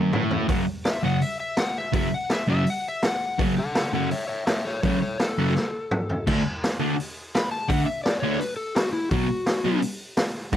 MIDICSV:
0, 0, Header, 1, 4, 480
1, 0, Start_track
1, 0, Key_signature, 3, "minor"
1, 0, Tempo, 362100
1, 655, Time_signature, 4, 2, 24, 8
1, 6893, Tempo, 355661
1, 14136, End_track
2, 0, Start_track
2, 0, Title_t, "Electric slide guitar"
2, 0, Program_c, 0, 29
2, 1133, Note_on_c, 0, 76, 101
2, 1369, Note_off_c, 0, 76, 0
2, 1394, Note_on_c, 0, 78, 81
2, 1619, Note_on_c, 0, 76, 82
2, 1620, Note_off_c, 0, 78, 0
2, 1842, Note_off_c, 0, 76, 0
2, 1858, Note_on_c, 0, 76, 95
2, 2093, Note_off_c, 0, 76, 0
2, 2101, Note_on_c, 0, 78, 80
2, 2335, Note_off_c, 0, 78, 0
2, 2362, Note_on_c, 0, 76, 88
2, 2580, Note_off_c, 0, 76, 0
2, 2596, Note_on_c, 0, 76, 85
2, 2823, Note_off_c, 0, 76, 0
2, 2839, Note_on_c, 0, 78, 86
2, 3065, Note_off_c, 0, 78, 0
2, 3065, Note_on_c, 0, 76, 82
2, 3298, Note_off_c, 0, 76, 0
2, 3317, Note_on_c, 0, 76, 97
2, 3544, Note_off_c, 0, 76, 0
2, 3579, Note_on_c, 0, 78, 88
2, 3796, Note_off_c, 0, 78, 0
2, 3824, Note_on_c, 0, 76, 94
2, 4038, Note_off_c, 0, 76, 0
2, 4042, Note_on_c, 0, 78, 93
2, 4499, Note_off_c, 0, 78, 0
2, 4750, Note_on_c, 0, 69, 85
2, 4763, Note_on_c, 0, 78, 89
2, 4986, Note_off_c, 0, 78, 0
2, 4987, Note_off_c, 0, 69, 0
2, 5002, Note_on_c, 0, 69, 84
2, 5008, Note_on_c, 0, 78, 92
2, 5211, Note_off_c, 0, 69, 0
2, 5217, Note_off_c, 0, 78, 0
2, 5227, Note_on_c, 0, 69, 78
2, 5233, Note_on_c, 0, 78, 91
2, 5448, Note_off_c, 0, 69, 0
2, 5455, Note_on_c, 0, 73, 83
2, 5457, Note_off_c, 0, 78, 0
2, 5462, Note_on_c, 0, 76, 92
2, 5654, Note_off_c, 0, 73, 0
2, 5669, Note_off_c, 0, 76, 0
2, 5670, Note_on_c, 0, 73, 79
2, 5685, Note_on_c, 0, 76, 89
2, 5907, Note_off_c, 0, 73, 0
2, 5918, Note_off_c, 0, 76, 0
2, 5927, Note_on_c, 0, 73, 81
2, 5936, Note_on_c, 0, 76, 88
2, 6156, Note_off_c, 0, 73, 0
2, 6167, Note_on_c, 0, 69, 79
2, 6168, Note_off_c, 0, 76, 0
2, 6183, Note_on_c, 0, 73, 90
2, 6390, Note_off_c, 0, 69, 0
2, 6406, Note_off_c, 0, 73, 0
2, 6406, Note_on_c, 0, 69, 77
2, 6422, Note_on_c, 0, 73, 88
2, 6633, Note_off_c, 0, 69, 0
2, 6643, Note_off_c, 0, 73, 0
2, 6659, Note_on_c, 0, 73, 87
2, 6661, Note_on_c, 0, 69, 75
2, 6879, Note_off_c, 0, 69, 0
2, 6888, Note_off_c, 0, 73, 0
2, 6898, Note_on_c, 0, 69, 101
2, 8302, Note_off_c, 0, 69, 0
2, 9803, Note_on_c, 0, 83, 103
2, 10012, Note_off_c, 0, 83, 0
2, 10017, Note_on_c, 0, 81, 90
2, 10247, Note_on_c, 0, 78, 87
2, 10255, Note_off_c, 0, 81, 0
2, 10476, Note_off_c, 0, 78, 0
2, 10481, Note_on_c, 0, 76, 90
2, 10715, Note_off_c, 0, 76, 0
2, 10721, Note_on_c, 0, 74, 82
2, 10935, Note_off_c, 0, 74, 0
2, 10940, Note_on_c, 0, 73, 94
2, 11195, Note_off_c, 0, 73, 0
2, 11202, Note_on_c, 0, 71, 88
2, 11430, Note_off_c, 0, 71, 0
2, 11435, Note_on_c, 0, 69, 99
2, 11682, Note_off_c, 0, 69, 0
2, 11683, Note_on_c, 0, 66, 96
2, 11918, Note_off_c, 0, 66, 0
2, 11924, Note_on_c, 0, 64, 102
2, 12165, Note_off_c, 0, 64, 0
2, 12176, Note_on_c, 0, 66, 104
2, 13107, Note_off_c, 0, 66, 0
2, 14136, End_track
3, 0, Start_track
3, 0, Title_t, "Distorted electric guitar"
3, 0, Program_c, 1, 30
3, 0, Note_on_c, 1, 42, 109
3, 161, Note_on_c, 1, 45, 99
3, 168, Note_off_c, 1, 42, 0
3, 632, Note_on_c, 1, 42, 91
3, 640, Note_off_c, 1, 45, 0
3, 645, Note_on_c, 1, 49, 93
3, 663, Note_on_c, 1, 54, 105
3, 837, Note_off_c, 1, 42, 0
3, 843, Note_off_c, 1, 49, 0
3, 852, Note_off_c, 1, 54, 0
3, 1365, Note_on_c, 1, 42, 83
3, 1384, Note_on_c, 1, 54, 89
3, 1386, Note_on_c, 1, 49, 94
3, 1565, Note_off_c, 1, 42, 0
3, 1574, Note_off_c, 1, 54, 0
3, 1575, Note_off_c, 1, 49, 0
3, 2551, Note_on_c, 1, 42, 88
3, 2560, Note_on_c, 1, 49, 97
3, 2574, Note_on_c, 1, 54, 109
3, 2760, Note_off_c, 1, 42, 0
3, 2764, Note_off_c, 1, 49, 0
3, 2771, Note_off_c, 1, 54, 0
3, 3281, Note_on_c, 1, 42, 95
3, 3290, Note_on_c, 1, 49, 88
3, 3307, Note_on_c, 1, 54, 90
3, 3485, Note_off_c, 1, 42, 0
3, 3490, Note_off_c, 1, 49, 0
3, 3498, Note_off_c, 1, 54, 0
3, 4485, Note_on_c, 1, 42, 89
3, 4505, Note_on_c, 1, 49, 94
3, 4508, Note_on_c, 1, 54, 109
3, 4687, Note_off_c, 1, 42, 0
3, 4697, Note_off_c, 1, 49, 0
3, 4698, Note_off_c, 1, 54, 0
3, 5211, Note_on_c, 1, 42, 95
3, 5224, Note_on_c, 1, 49, 97
3, 5235, Note_on_c, 1, 54, 98
3, 5409, Note_off_c, 1, 42, 0
3, 5415, Note_off_c, 1, 49, 0
3, 5420, Note_off_c, 1, 54, 0
3, 6411, Note_on_c, 1, 42, 92
3, 6424, Note_on_c, 1, 49, 101
3, 6425, Note_on_c, 1, 54, 95
3, 6604, Note_off_c, 1, 42, 0
3, 6611, Note_off_c, 1, 49, 0
3, 6611, Note_off_c, 1, 54, 0
3, 7138, Note_on_c, 1, 42, 94
3, 7143, Note_on_c, 1, 49, 96
3, 7158, Note_on_c, 1, 54, 97
3, 7330, Note_off_c, 1, 42, 0
3, 7333, Note_off_c, 1, 49, 0
3, 7340, Note_off_c, 1, 54, 0
3, 8334, Note_on_c, 1, 50, 95
3, 8339, Note_on_c, 1, 57, 105
3, 8345, Note_on_c, 1, 62, 97
3, 8531, Note_off_c, 1, 50, 0
3, 8533, Note_off_c, 1, 57, 0
3, 8537, Note_off_c, 1, 62, 0
3, 9048, Note_on_c, 1, 50, 86
3, 9052, Note_on_c, 1, 57, 95
3, 9069, Note_on_c, 1, 62, 100
3, 9249, Note_off_c, 1, 50, 0
3, 9251, Note_off_c, 1, 57, 0
3, 9260, Note_off_c, 1, 62, 0
3, 10243, Note_on_c, 1, 50, 97
3, 10260, Note_on_c, 1, 57, 100
3, 10271, Note_on_c, 1, 62, 108
3, 10447, Note_off_c, 1, 50, 0
3, 10455, Note_off_c, 1, 57, 0
3, 10461, Note_off_c, 1, 62, 0
3, 10982, Note_on_c, 1, 50, 97
3, 10988, Note_on_c, 1, 57, 104
3, 11004, Note_on_c, 1, 62, 109
3, 11175, Note_off_c, 1, 50, 0
3, 11179, Note_off_c, 1, 57, 0
3, 11187, Note_off_c, 1, 62, 0
3, 12183, Note_on_c, 1, 47, 95
3, 12185, Note_on_c, 1, 54, 99
3, 12204, Note_on_c, 1, 59, 106
3, 12374, Note_off_c, 1, 47, 0
3, 12375, Note_off_c, 1, 54, 0
3, 12385, Note_off_c, 1, 59, 0
3, 12895, Note_on_c, 1, 47, 102
3, 12910, Note_on_c, 1, 54, 106
3, 12922, Note_on_c, 1, 59, 116
3, 13089, Note_off_c, 1, 47, 0
3, 13096, Note_off_c, 1, 54, 0
3, 13102, Note_off_c, 1, 59, 0
3, 14085, Note_on_c, 1, 44, 99
3, 14091, Note_on_c, 1, 51, 108
3, 14136, Note_off_c, 1, 44, 0
3, 14136, Note_off_c, 1, 51, 0
3, 14136, End_track
4, 0, Start_track
4, 0, Title_t, "Drums"
4, 173, Note_on_c, 9, 45, 92
4, 305, Note_off_c, 9, 45, 0
4, 408, Note_on_c, 9, 43, 88
4, 541, Note_off_c, 9, 43, 0
4, 646, Note_on_c, 9, 46, 61
4, 648, Note_on_c, 9, 36, 111
4, 779, Note_off_c, 9, 46, 0
4, 781, Note_off_c, 9, 36, 0
4, 1127, Note_on_c, 9, 38, 104
4, 1128, Note_on_c, 9, 46, 57
4, 1259, Note_off_c, 9, 38, 0
4, 1261, Note_off_c, 9, 46, 0
4, 1611, Note_on_c, 9, 46, 55
4, 1743, Note_off_c, 9, 46, 0
4, 2080, Note_on_c, 9, 38, 117
4, 2081, Note_on_c, 9, 46, 53
4, 2212, Note_off_c, 9, 38, 0
4, 2214, Note_off_c, 9, 46, 0
4, 2318, Note_on_c, 9, 38, 29
4, 2451, Note_off_c, 9, 38, 0
4, 2563, Note_on_c, 9, 46, 59
4, 2566, Note_on_c, 9, 36, 114
4, 2695, Note_off_c, 9, 46, 0
4, 2698, Note_off_c, 9, 36, 0
4, 3045, Note_on_c, 9, 38, 108
4, 3046, Note_on_c, 9, 46, 55
4, 3177, Note_off_c, 9, 38, 0
4, 3179, Note_off_c, 9, 46, 0
4, 3532, Note_on_c, 9, 46, 60
4, 3664, Note_off_c, 9, 46, 0
4, 4012, Note_on_c, 9, 38, 112
4, 4013, Note_on_c, 9, 46, 60
4, 4144, Note_off_c, 9, 38, 0
4, 4146, Note_off_c, 9, 46, 0
4, 4498, Note_on_c, 9, 36, 114
4, 4502, Note_on_c, 9, 46, 62
4, 4631, Note_off_c, 9, 36, 0
4, 4635, Note_off_c, 9, 46, 0
4, 4973, Note_on_c, 9, 38, 107
4, 4975, Note_on_c, 9, 46, 58
4, 5106, Note_off_c, 9, 38, 0
4, 5107, Note_off_c, 9, 46, 0
4, 5447, Note_on_c, 9, 46, 60
4, 5580, Note_off_c, 9, 46, 0
4, 5925, Note_on_c, 9, 38, 116
4, 5926, Note_on_c, 9, 46, 62
4, 6057, Note_off_c, 9, 38, 0
4, 6058, Note_off_c, 9, 46, 0
4, 6167, Note_on_c, 9, 38, 31
4, 6300, Note_off_c, 9, 38, 0
4, 6405, Note_on_c, 9, 46, 57
4, 6408, Note_on_c, 9, 36, 112
4, 6538, Note_off_c, 9, 46, 0
4, 6540, Note_off_c, 9, 36, 0
4, 6888, Note_on_c, 9, 38, 110
4, 6889, Note_on_c, 9, 46, 55
4, 7023, Note_off_c, 9, 38, 0
4, 7024, Note_off_c, 9, 46, 0
4, 7257, Note_on_c, 9, 38, 35
4, 7371, Note_off_c, 9, 38, 0
4, 7371, Note_on_c, 9, 38, 61
4, 7506, Note_off_c, 9, 38, 0
4, 7854, Note_on_c, 9, 45, 91
4, 7989, Note_off_c, 9, 45, 0
4, 8101, Note_on_c, 9, 43, 84
4, 8236, Note_off_c, 9, 43, 0
4, 8341, Note_on_c, 9, 49, 99
4, 8342, Note_on_c, 9, 36, 110
4, 8476, Note_off_c, 9, 49, 0
4, 8477, Note_off_c, 9, 36, 0
4, 8833, Note_on_c, 9, 38, 106
4, 8834, Note_on_c, 9, 46, 57
4, 8968, Note_off_c, 9, 38, 0
4, 8969, Note_off_c, 9, 46, 0
4, 9320, Note_on_c, 9, 46, 62
4, 9455, Note_off_c, 9, 46, 0
4, 9792, Note_on_c, 9, 38, 111
4, 9794, Note_on_c, 9, 46, 59
4, 9927, Note_off_c, 9, 38, 0
4, 9929, Note_off_c, 9, 46, 0
4, 10265, Note_on_c, 9, 36, 115
4, 10267, Note_on_c, 9, 46, 59
4, 10400, Note_off_c, 9, 36, 0
4, 10402, Note_off_c, 9, 46, 0
4, 10747, Note_on_c, 9, 38, 104
4, 10748, Note_on_c, 9, 46, 56
4, 10882, Note_off_c, 9, 38, 0
4, 10883, Note_off_c, 9, 46, 0
4, 11113, Note_on_c, 9, 38, 35
4, 11220, Note_on_c, 9, 46, 58
4, 11247, Note_off_c, 9, 38, 0
4, 11355, Note_off_c, 9, 46, 0
4, 11698, Note_on_c, 9, 38, 120
4, 11699, Note_on_c, 9, 46, 63
4, 11833, Note_off_c, 9, 38, 0
4, 11834, Note_off_c, 9, 46, 0
4, 12169, Note_on_c, 9, 46, 60
4, 12174, Note_on_c, 9, 36, 109
4, 12304, Note_off_c, 9, 46, 0
4, 12309, Note_off_c, 9, 36, 0
4, 12648, Note_on_c, 9, 38, 107
4, 12649, Note_on_c, 9, 46, 60
4, 12783, Note_off_c, 9, 38, 0
4, 12784, Note_off_c, 9, 46, 0
4, 13130, Note_on_c, 9, 46, 64
4, 13265, Note_off_c, 9, 46, 0
4, 13601, Note_on_c, 9, 38, 120
4, 13603, Note_on_c, 9, 46, 67
4, 13736, Note_off_c, 9, 38, 0
4, 13737, Note_off_c, 9, 46, 0
4, 13840, Note_on_c, 9, 38, 32
4, 13975, Note_off_c, 9, 38, 0
4, 14081, Note_on_c, 9, 46, 62
4, 14085, Note_on_c, 9, 36, 118
4, 14136, Note_off_c, 9, 36, 0
4, 14136, Note_off_c, 9, 46, 0
4, 14136, End_track
0, 0, End_of_file